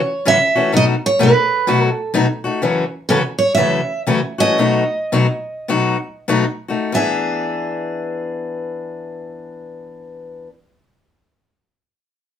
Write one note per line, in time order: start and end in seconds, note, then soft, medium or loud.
0.00 0.28 C#5 medium
0.25 0.36 F#2 medium
0.25 0.37 C#3 medium
0.25 0.37 E3 medium
0.25 0.37 A3 medium
0.25 0.37 C#4 medium
0.25 0.37 F#4 medium
0.25 0.75 E5 medium
0.55 0.73 E3 soft
0.55 0.72 A3 soft
0.55 0.72 C#4 soft
0.55 0.72 F#4 medium
0.72 0.94 B2 medium
0.72 0.94 F#3 medium
0.72 0.94 A3 medium
0.72 0.94 D#4 medium
0.72 0.94 F#4 medium
0.77 0.84 D#5 medium
1.06 1.20 C#5 medium
1.19 1.31 B2 medium
1.19 1.31 F#3 medium
1.19 1.31 A3 medium
1.19 1.31 D#4 medium
1.19 1.31 F#4 medium
1.19 1.86 B4 medium
1.67 1.88 B2 medium
1.67 1.88 F#3 medium
1.67 1.89 A3 medium
1.67 1.89 D#4 medium
1.67 1.89 F#4 medium
1.86 2.12 A4 medium
2.14 2.25 B2 medium
2.14 2.25 F#3 medium
2.14 2.25 A3 medium
2.14 2.25 D#4 medium
2.14 2.26 F#4 medium
2.44 2.62 A3 soft
2.44 2.61 D#4 soft
2.44 2.60 F#4 medium
2.62 2.83 F#2 medium
2.62 2.83 C#3 medium
2.62 2.83 E3 medium
2.62 2.84 A3 medium
2.62 2.84 C#4 medium
2.62 2.84 F#4 medium
3.09 3.20 F#2 medium
3.09 3.21 C#3 medium
3.09 3.21 E3 medium
3.09 3.21 A3 medium
3.09 3.21 C#4 medium
3.09 3.21 F#4 medium
3.09 3.17 A4 medium
3.39 3.54 C#5 medium
3.55 3.79 F#2 medium
3.55 3.79 C#3 medium
3.55 3.80 E3 medium
3.55 3.80 A3 medium
3.55 3.80 C#4 medium
3.55 3.80 F#4 medium
3.55 4.02 E5 medium
4.07 4.19 F#2 medium
4.07 4.19 C#3 medium
4.07 4.19 E3 medium
4.07 4.19 A3 medium
4.07 4.19 C#4 medium
4.07 4.19 F#4 medium
4.38 4.58 E3 soft
4.38 4.58 A3 medium
4.38 4.58 C#4 medium
4.38 4.57 F#4 medium
4.38 6.25 D#5 medium
4.58 4.82 B2 medium
4.58 4.82 F#3 medium
4.58 4.83 A3 medium
4.58 4.83 D#4 medium
4.58 4.83 F#4 medium
5.12 5.25 B2 medium
5.12 5.26 F#3 medium
5.12 5.26 A3 medium
5.12 5.26 D#4 medium
5.12 5.26 F#4 medium
5.68 5.95 B2 medium
5.68 5.96 F#3 medium
5.68 5.96 A3 medium
5.68 5.96 D#4 medium
5.68 5.96 F#4 medium
6.28 6.44 B2 medium
6.28 6.44 F#3 medium
6.28 6.44 A3 medium
6.28 6.44 D#4 medium
6.28 6.44 F#4 medium
6.68 6.93 A3 soft
6.68 6.93 D#4 soft
6.68 6.92 F#4 soft
6.92 10.47 E3 medium
6.92 10.49 B3 medium
6.92 10.50 D4 medium
6.92 10.51 G#4 medium
6.92 10.46 E5 medium